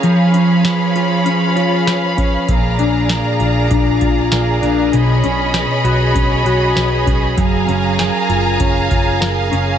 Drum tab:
HH |xxxxxxxx|xxxxxxxx|xxxxxxxx|xxxxxxxx|
SD |--o---o-|--o---o-|--o---o-|--o---o-|
BD |-------o|o---oo--|----o--o|o---oo--|